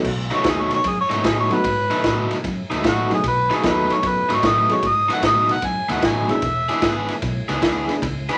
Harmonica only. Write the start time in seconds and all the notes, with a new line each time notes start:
0.35 C#5
0.50 G#4
0.61 C#5
0.74 C#5
0.89 G#4
1.01 C#5
1.12 C#5
1.26 G#4
1.40 C#5
1.54 B4
2.88 F#4
3.14 G#4
3.28 B4
3.55 G#4
3.69 B4
3.94 C#5
4.07 B4
4.35 C#5
4.48 D#5
4.74 C#5
4.87 D#5
5.13 F#5
5.26 D#5
5.53 F#5
5.66 G#5
5.93 F#5
6.06 G#5
6.32 E5
8.32 B5